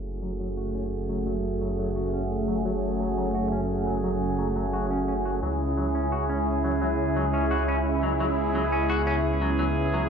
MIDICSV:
0, 0, Header, 1, 6, 480
1, 0, Start_track
1, 0, Key_signature, 3, "minor"
1, 0, Tempo, 346821
1, 1752, Time_signature, 4, 2, 24, 8
1, 13965, End_track
2, 0, Start_track
2, 0, Title_t, "Ambient pad"
2, 0, Program_c, 0, 92
2, 0, Note_on_c, 0, 57, 76
2, 0, Note_on_c, 0, 61, 94
2, 130, Note_on_c, 0, 78, 76
2, 725, Note_on_c, 0, 80, 79
2, 7513, Note_off_c, 0, 57, 0
2, 7689, Note_on_c, 0, 76, 78
2, 7752, Note_on_c, 0, 68, 74
2, 8897, Note_off_c, 0, 78, 0
2, 13965, Note_off_c, 0, 61, 0
2, 13965, Note_off_c, 0, 68, 0
2, 13965, Note_off_c, 0, 76, 0
2, 13965, Note_off_c, 0, 80, 0
2, 13965, End_track
3, 0, Start_track
3, 0, Title_t, "Brass ensemble"
3, 0, Program_c, 1, 61
3, 0, Note_on_c, 1, 57, 88
3, 0, Note_on_c, 1, 66, 80
3, 0, Note_on_c, 1, 68, 97
3, 3644, Note_off_c, 1, 57, 0
3, 3644, Note_off_c, 1, 66, 0
3, 3644, Note_off_c, 1, 68, 0
3, 3673, Note_on_c, 1, 57, 87
3, 3673, Note_on_c, 1, 66, 77
3, 3673, Note_on_c, 1, 68, 96
3, 7484, Note_off_c, 1, 57, 0
3, 7484, Note_off_c, 1, 66, 0
3, 7484, Note_off_c, 1, 68, 0
3, 7512, Note_on_c, 1, 61, 84
3, 7512, Note_on_c, 1, 64, 79
3, 7512, Note_on_c, 1, 68, 96
3, 11117, Note_off_c, 1, 61, 0
3, 11117, Note_off_c, 1, 64, 0
3, 11117, Note_off_c, 1, 68, 0
3, 11353, Note_on_c, 1, 61, 89
3, 11353, Note_on_c, 1, 64, 82
3, 11353, Note_on_c, 1, 68, 99
3, 13965, Note_off_c, 1, 61, 0
3, 13965, Note_off_c, 1, 64, 0
3, 13965, Note_off_c, 1, 68, 0
3, 13965, End_track
4, 0, Start_track
4, 0, Title_t, "Analog synth pad"
4, 0, Program_c, 2, 89
4, 0, Note_on_c, 2, 54, 85
4, 0, Note_on_c, 2, 57, 92
4, 0, Note_on_c, 2, 61, 77
4, 0, Note_on_c, 2, 68, 75
4, 7457, Note_off_c, 2, 54, 0
4, 7457, Note_off_c, 2, 57, 0
4, 7457, Note_off_c, 2, 68, 0
4, 7512, Note_on_c, 2, 49, 86
4, 7513, Note_on_c, 2, 56, 78
4, 7513, Note_on_c, 2, 64, 98
4, 11297, Note_off_c, 2, 61, 0
4, 11353, Note_on_c, 2, 59, 78
4, 13965, Note_off_c, 2, 49, 0
4, 13965, Note_off_c, 2, 56, 0
4, 13965, Note_off_c, 2, 59, 0
4, 13965, Note_off_c, 2, 64, 0
4, 13965, End_track
5, 0, Start_track
5, 0, Title_t, "Clean electric guitar"
5, 0, Program_c, 3, 27
5, 312, Note_on_c, 3, 54, 72
5, 422, Note_off_c, 3, 54, 0
5, 553, Note_on_c, 3, 54, 70
5, 662, Note_off_c, 3, 54, 0
5, 792, Note_on_c, 3, 66, 97
5, 956, Note_off_c, 3, 66, 0
5, 1032, Note_on_c, 3, 61, 100
5, 1141, Note_off_c, 3, 61, 0
5, 1513, Note_on_c, 3, 54, 75
5, 1622, Note_off_c, 3, 54, 0
5, 1752, Note_on_c, 3, 54, 80
5, 1818, Note_off_c, 3, 54, 0
5, 2233, Note_on_c, 3, 54, 75
5, 2342, Note_off_c, 3, 54, 0
5, 2473, Note_on_c, 3, 54, 72
5, 2582, Note_off_c, 3, 54, 0
5, 2713, Note_on_c, 3, 66, 101
5, 2877, Note_off_c, 3, 66, 0
5, 2953, Note_on_c, 3, 61, 96
5, 3062, Note_off_c, 3, 61, 0
5, 3433, Note_on_c, 3, 54, 72
5, 3542, Note_off_c, 3, 54, 0
5, 3672, Note_on_c, 3, 54, 79
5, 3738, Note_off_c, 3, 54, 0
5, 4153, Note_on_c, 3, 54, 75
5, 4262, Note_off_c, 3, 54, 0
5, 4392, Note_on_c, 3, 54, 73
5, 4501, Note_off_c, 3, 54, 0
5, 4631, Note_on_c, 3, 66, 100
5, 4796, Note_off_c, 3, 66, 0
5, 4872, Note_on_c, 3, 61, 98
5, 4981, Note_off_c, 3, 61, 0
5, 5352, Note_on_c, 3, 54, 71
5, 5461, Note_off_c, 3, 54, 0
5, 5591, Note_on_c, 3, 54, 82
5, 5657, Note_off_c, 3, 54, 0
5, 6071, Note_on_c, 3, 54, 71
5, 6181, Note_off_c, 3, 54, 0
5, 6311, Note_on_c, 3, 54, 71
5, 6421, Note_off_c, 3, 54, 0
5, 6551, Note_on_c, 3, 66, 100
5, 6716, Note_off_c, 3, 66, 0
5, 6792, Note_on_c, 3, 61, 71
5, 6901, Note_off_c, 3, 61, 0
5, 7032, Note_on_c, 3, 61, 72
5, 7098, Note_off_c, 3, 61, 0
5, 7272, Note_on_c, 3, 66, 74
5, 7338, Note_off_c, 3, 66, 0
5, 7512, Note_on_c, 3, 54, 81
5, 7578, Note_off_c, 3, 54, 0
5, 7992, Note_on_c, 3, 54, 75
5, 8102, Note_off_c, 3, 54, 0
5, 8232, Note_on_c, 3, 61, 69
5, 8396, Note_off_c, 3, 61, 0
5, 8472, Note_on_c, 3, 66, 99
5, 8636, Note_off_c, 3, 66, 0
5, 8711, Note_on_c, 3, 61, 97
5, 8821, Note_off_c, 3, 61, 0
5, 9192, Note_on_c, 3, 54, 75
5, 9301, Note_off_c, 3, 54, 0
5, 9432, Note_on_c, 3, 54, 82
5, 9498, Note_off_c, 3, 54, 0
5, 9912, Note_on_c, 3, 54, 76
5, 10022, Note_off_c, 3, 54, 0
5, 10152, Note_on_c, 3, 61, 72
5, 10316, Note_off_c, 3, 61, 0
5, 10393, Note_on_c, 3, 66, 99
5, 10556, Note_off_c, 3, 66, 0
5, 10633, Note_on_c, 3, 61, 98
5, 10742, Note_off_c, 3, 61, 0
5, 11112, Note_on_c, 3, 54, 76
5, 11222, Note_off_c, 3, 54, 0
5, 11353, Note_on_c, 3, 54, 83
5, 11418, Note_off_c, 3, 54, 0
5, 11833, Note_on_c, 3, 54, 75
5, 11942, Note_off_c, 3, 54, 0
5, 12072, Note_on_c, 3, 61, 74
5, 12236, Note_off_c, 3, 61, 0
5, 12312, Note_on_c, 3, 66, 102
5, 12476, Note_off_c, 3, 66, 0
5, 12551, Note_on_c, 3, 61, 97
5, 12661, Note_off_c, 3, 61, 0
5, 13031, Note_on_c, 3, 54, 76
5, 13141, Note_off_c, 3, 54, 0
5, 13272, Note_on_c, 3, 54, 83
5, 13338, Note_off_c, 3, 54, 0
5, 13752, Note_on_c, 3, 54, 76
5, 13861, Note_off_c, 3, 54, 0
5, 13965, End_track
6, 0, Start_track
6, 0, Title_t, "Detuned saw bass"
6, 0, Program_c, 4, 39
6, 0, Note_on_c, 4, 30, 84
6, 7489, Note_off_c, 4, 30, 0
6, 7512, Note_on_c, 4, 37, 89
6, 13965, Note_off_c, 4, 37, 0
6, 13965, End_track
0, 0, End_of_file